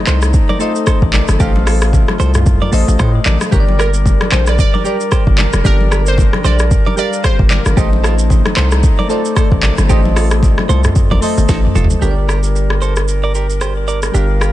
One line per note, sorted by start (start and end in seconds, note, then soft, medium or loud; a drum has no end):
0.00 0.59 A3 medium
0.00 3.35 A3 medium
0.00 3.35 C4 medium
0.00 1.38 D#4 medium
0.00 0.60 A4 medium
0.00 0.61 C5 medium
0.00 0.62 D#5 loud
0.07 0.39 C2 medium
0.07 0.19 A4 medium
0.07 0.19 C5 medium
0.07 clap medium
0.07 low conga medium
0.07 shaker medium
0.22 cross-stick medium
0.22 shaker medium
0.34 kick loud
0.34 shaker medium
0.49 0.58 A#4 medium
0.49 0.57 D5 medium
0.49 high conga medium
0.59 1.19 A3 medium
0.59 0.72 F4 medium
0.59 1.19 A4 medium
0.59 0.72 A4 medium
0.59 1.19 C5 medium
0.59 1.20 D#5 loud
0.59 shaker medium
0.76 shaker medium
0.87 0.99 A4 medium
0.87 0.98 C5 medium
0.87 kick medium
0.87 cross-stick medium
0.87 shaker medium
1.02 1.22 A1 medium
1.02 kick loud
1.14 1.25 A#4 medium
1.14 1.25 D5 medium
1.14 clap loud
1.14 high conga medium
1.14 low conga medium
1.14 shaker medium
1.28 1.37 G1 medium
1.28 cross-stick medium
1.28 high conga medium
1.28 shaker medium
1.39 2.05 A1 loud
1.39 2.17 A3 medium
1.39 1.52 D#4 medium
1.39 3.35 F4 medium
1.39 1.51 G4 loud
1.39 2.18 A4 medium
1.39 2.18 C5 medium
1.39 2.18 F5 loud
1.39 kick loud
1.39 low conga medium
1.39 shaker medium
1.56 high conga medium
1.67 1.78 F4 medium
1.67 1.78 A4 medium
1.67 cross-stick loud
1.67 open hi-hat medium
1.67 shaker medium
1.81 cross-stick loud
1.81 shaker medium
1.93 kick medium
1.93 low conga medium
1.93 shaker medium
2.08 cross-stick medium
2.08 high conga medium
2.20 2.60 C2 medium
2.20 2.31 A4 medium
2.20 2.31 C5 medium
2.20 low conga medium
2.20 shaker medium
2.34 cross-stick medium
2.34 mid tom medium
2.34 shaker medium
2.46 kick loud
2.46 mid tom loud
2.46 shaker medium
2.62 2.70 A#4 medium
2.62 2.70 D5 medium
2.62 high conga medium
2.72 2.84 A1 medium
2.72 3.31 A3 medium
2.72 2.85 F4 medium
2.72 3.31 A4 medium
2.72 2.84 A4 medium
2.72 3.32 C5 medium
2.72 3.32 D#5 loud
2.72 open hi-hat medium
2.72 shaker medium
2.88 2.97 A1 medium
2.88 shaker medium
2.99 3.19 A2 loud
2.99 3.11 A4 medium
2.99 3.11 C5 medium
2.99 kick medium
2.99 cross-stick medium
2.99 shaker medium
3.26 3.37 A1 medium
3.26 3.38 A#4 medium
3.26 3.37 D5 medium
3.26 clap loud
3.26 high conga medium
3.26 low conga medium
3.26 shaker medium
3.41 cross-stick medium
3.41 high conga medium
3.41 shaker medium
3.51 4.17 G1 loud
3.51 4.29 G3 medium
3.51 7.73 G3 medium
3.51 7.73 D4 medium
3.51 3.64 D4 medium
3.51 4.30 G4 medium
3.51 3.64 G4 loud
3.51 7.73 A#4 loud
3.51 4.30 A#4 medium
3.51 3.60 C#5 medium
3.51 kick loud
3.51 low conga medium
3.51 shaker medium
3.60 4.34 D5 loud
3.68 high conga medium
3.79 3.91 G4 medium
3.79 3.90 A#4 medium
3.79 3.93 A#4 medium
3.79 cross-stick loud
3.79 shaker medium
3.94 shaker medium
4.06 kick medium
4.06 low conga medium
4.06 shaker medium
4.21 cross-stick loud
4.21 high conga medium
4.32 4.64 A#1 medium
4.32 4.44 A4 medium
4.32 4.43 C5 medium
4.32 4.46 C5 medium
4.32 clap medium
4.32 low conga medium
4.32 shaker medium
4.47 4.58 D5 medium
4.47 cross-stick medium
4.47 shaker medium
4.59 4.99 D5 loud
4.59 kick loud
4.59 shaker medium
4.74 4.83 A#4 medium
4.74 4.82 D5 medium
4.74 high conga medium
4.84 5.43 G3 medium
4.84 5.44 G4 medium
4.84 4.97 G4 medium
4.84 4.96 A#4 medium
4.84 5.44 A#4 medium
4.84 5.45 D5 medium
4.84 shaker medium
5.01 shaker medium
5.12 5.23 G4 medium
5.12 5.23 C5 medium
5.12 kick medium
5.12 cross-stick medium
5.12 shaker medium
5.27 5.47 G1 medium
5.27 kick medium
5.38 5.50 A#4 medium
5.38 5.50 D5 medium
5.38 clap loud
5.38 high conga medium
5.38 low conga medium
5.38 shaker medium
5.53 5.62 F1 medium
5.53 cross-stick medium
5.53 high conga medium
5.53 shaker medium
5.63 6.30 G1 loud
5.63 6.42 G3 medium
5.63 5.77 D4 medium
5.63 6.42 G4 medium
5.63 5.76 G4 loud
5.63 5.72 A4 medium
5.63 5.79 A#4 loud
5.63 6.43 D5 medium
5.63 kick loud
5.63 low conga medium
5.63 shaker medium
5.71 6.46 A#4 medium
5.81 high conga medium
5.91 6.03 G4 medium
5.91 6.03 A#4 medium
5.91 cross-stick loud
5.91 shaker medium
6.06 6.17 C5 medium
6.06 shaker medium
6.18 kick medium
6.18 low conga medium
6.18 shaker medium
6.33 cross-stick medium
6.33 high conga medium
6.44 6.76 A#1 medium
6.44 6.56 A4 medium
6.44 6.56 C5 medium
6.44 6.58 D5 medium
6.44 low conga medium
6.44 shaker medium
6.59 cross-stick medium
6.59 shaker medium
6.71 kick loud
6.71 shaker medium
6.86 6.95 A#4 medium
6.86 6.95 D5 medium
6.86 high conga medium
6.96 7.56 G3 medium
6.96 7.56 G4 medium
6.96 7.09 G4 medium
6.96 7.09 A#4 medium
6.96 7.57 A#4 medium
6.96 7.11 D5 medium
6.96 7.57 F5 medium
6.96 shaker medium
7.13 shaker medium
7.24 7.36 G4 medium
7.24 7.35 C5 medium
7.24 7.38 C5 medium
7.24 kick medium
7.24 cross-stick loud
7.24 shaker medium
7.39 7.59 G1 medium
7.39 kick medium
7.50 7.62 A#4 medium
7.50 7.64 A#4 medium
7.50 7.62 D5 medium
7.50 clap loud
7.50 high conga medium
7.50 low conga medium
7.50 shaker medium
7.66 7.74 G1 medium
7.66 cross-stick medium
7.66 high conga medium
7.66 shaker medium
7.76 8.42 A1 loud
7.76 8.54 A3 medium
7.76 11.85 A3 medium
7.76 11.85 C4 medium
7.76 9.88 D#4 medium
7.76 7.89 D#4 medium
7.76 7.88 G4 loud
7.76 8.55 A4 medium
7.76 8.55 C5 medium
7.76 8.56 D#5 loud
7.76 kick loud
7.76 low conga medium
7.76 shaker medium
7.93 high conga medium
8.04 8.15 F4 medium
8.04 8.15 A4 medium
8.04 cross-stick loud
8.04 shaker medium
8.19 shaker medium
8.30 kick medium
8.30 low conga medium
8.30 shaker medium
8.46 cross-stick loud
8.46 high conga medium
8.57 8.88 C2 medium
8.57 8.69 A4 medium
8.57 8.68 C5 medium
8.57 clap loud
8.57 low conga medium
8.57 shaker medium
8.71 cross-stick medium
8.71 shaker medium
8.83 kick loud
8.83 shaker medium
8.99 9.07 A#4 medium
8.99 9.07 D5 medium
8.99 high conga medium
9.09 9.68 A3 medium
9.09 9.22 F4 medium
9.09 9.69 A4 medium
9.09 9.21 A4 medium
9.09 9.69 C5 medium
9.09 9.69 D5 loud
9.09 shaker medium
9.25 shaker medium
9.36 9.48 A4 medium
9.36 9.48 C5 medium
9.36 kick medium
9.36 cross-stick medium
9.36 shaker medium
9.52 9.72 A1 medium
9.52 kick loud
9.63 9.75 A#4 medium
9.63 9.74 D5 medium
9.63 clap loud
9.63 high conga medium
9.63 low conga medium
9.63 shaker medium
9.78 9.91 G1 medium
9.78 cross-stick medium
9.78 high conga medium
9.78 shaker medium
9.88 10.55 A1 loud
9.88 10.67 A3 medium
9.88 10.01 D#4 medium
9.88 11.85 F4 medium
9.88 10.01 G4 loud
9.88 10.67 A4 medium
9.88 10.67 C5 medium
9.88 10.68 D#5 loud
9.88 kick loud
9.88 low conga medium
9.88 shaker medium
10.05 high conga medium
10.16 10.28 F4 medium
10.16 10.27 A4 medium
10.16 cross-stick loud
10.16 open hi-hat medium
10.16 shaker medium
10.31 cross-stick loud
10.31 shaker medium
10.43 kick medium
10.43 low conga medium
10.43 shaker medium
10.58 cross-stick medium
10.58 high conga medium
10.69 10.89 C2 medium
10.69 10.81 A4 medium
10.69 10.80 C5 medium
10.69 low conga medium
10.69 shaker medium
10.84 cross-stick medium
10.84 mid tom medium
10.84 shaker medium
10.96 kick loud
10.96 mid tom medium
10.96 shaker medium
11.11 11.20 A1 medium
11.11 11.20 A#4 medium
11.11 11.19 D5 medium
11.11 high conga medium
11.21 11.80 A3 medium
11.21 11.81 A4 medium
11.21 11.34 A4 medium
11.21 11.34 C5 medium
11.21 11.81 C5 medium
11.21 11.82 D#5 loud
11.21 open hi-hat medium
11.21 shaker medium
11.38 11.46 G1 medium
11.38 shaker medium
11.49 11.69 A1 loud
11.49 11.61 D#4 medium
11.49 11.60 A4 medium
11.49 kick medium
11.49 snare medium
11.49 shaker medium
11.66 mid tom medium
11.75 11.95 F1 medium
11.75 11.87 F4 medium
11.75 11.87 A4 medium
11.75 high conga medium
11.75 low conga medium
11.75 shaker medium
11.84 floor tom loud
11.90 high conga medium
11.90 shaker medium
11.99 14.10 G1 medium
11.99 14.09 G3 medium
11.99 14.52 G3 medium
11.99 14.52 D4 medium
11.99 12.14 D4 medium
11.99 14.10 G4 medium
11.99 12.13 G4 loud
11.99 14.52 A#4 medium
11.99 14.11 A#4 medium
11.99 shaker medium
12.04 12.11 C#5 medium
12.11 14.15 D5 medium
12.29 12.40 G4 medium
12.29 12.40 A#4 medium
12.29 cross-stick medium
12.29 shaker medium
12.43 shaker medium
12.56 shaker medium
12.70 cross-stick medium
12.82 12.93 A4 medium
12.82 12.93 C5 medium
12.82 shaker medium
12.96 cross-stick medium
12.96 shaker medium
13.08 shaker medium
13.24 13.32 A#4 medium
13.24 13.32 D5 medium
13.35 13.47 G4 medium
13.35 13.46 A#4 medium
13.35 shaker medium
13.50 shaker medium
13.61 13.73 G4 medium
13.61 13.73 C5 medium
13.61 cross-stick medium
13.61 shaker medium
13.88 14.00 A#4 medium
13.88 13.99 D5 medium
13.88 shaker medium
14.03 cross-stick medium
14.03 shaker medium
14.12 14.52 G1 medium
14.12 14.52 G3 medium
14.12 14.26 D4 medium
14.12 14.52 G4 medium
14.12 14.26 G4 medium
14.12 14.52 A#4 medium
14.12 shaker medium
14.17 14.52 F5 medium
14.41 14.52 G4 medium
14.41 14.52 A#4 medium
14.41 cross-stick medium
14.41 shaker medium